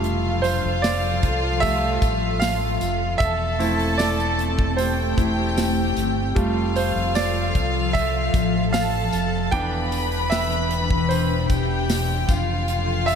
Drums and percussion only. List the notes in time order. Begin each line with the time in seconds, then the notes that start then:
0.04 hi-hat pedal, open hi-hat
0.44 hi-hat pedal, open hi-hat, tambourine
0.84 snare, hi-hat pedal, open hi-hat, tambourine
1.23 kick, hi-hat pedal, open hi-hat
1.62 kick, hi-hat pedal, open hi-hat, tambourine
2.02 kick, hi-hat pedal, open hi-hat, tambourine
2.42 snare, hi-hat pedal, open hi-hat, tambourine
2.81 hi-hat pedal, open hi-hat, tambourine
3.20 kick, hi-hat pedal, open hi-hat, tambourine
3.60 hi-hat pedal, open hi-hat, tambourine
3.80 open hi-hat
3.99 snare, hi-hat pedal, open hi-hat, tambourine
4.19 hi-hat pedal
4.38 hi-hat pedal, open hi-hat, tambourine
4.59 kick
4.78 hi-hat pedal, open hi-hat, tambourine
5.18 kick, hi-hat pedal, open hi-hat, tambourine
5.58 snare, hi-hat pedal, open hi-hat, tambourine
5.96 hi-hat pedal, open hi-hat, tambourine
6.36 kick, hi-hat pedal, open hi-hat
6.76 hi-hat pedal, open hi-hat, tambourine
7.15 snare, hi-hat pedal, open hi-hat, tambourine
7.55 kick, hi-hat pedal, open hi-hat
7.95 kick, hi-hat pedal, open hi-hat, tambourine
8.34 kick, hi-hat pedal, open hi-hat, tambourine
8.74 snare, hi-hat pedal, open hi-hat, tambourine
9.12 hi-hat pedal, open hi-hat, tambourine
9.52 kick, hi-hat pedal, open hi-hat
9.92 hi-hat pedal, open hi-hat, tambourine
10.12 open hi-hat
10.31 snare, hi-hat pedal, open hi-hat, tambourine
10.51 hi-hat pedal
10.71 hi-hat pedal, open hi-hat, tambourine
10.90 kick
11.11 hi-hat pedal, open hi-hat, tambourine
11.50 kick, hi-hat pedal, open hi-hat, tambourine
11.89 snare, hi-hat pedal, open hi-hat, tambourine
12.29 kick, hi-hat pedal, open hi-hat, tambourine
12.68 hi-hat pedal, open hi-hat, tambourine
13.08 hi-hat pedal, open hi-hat, tambourine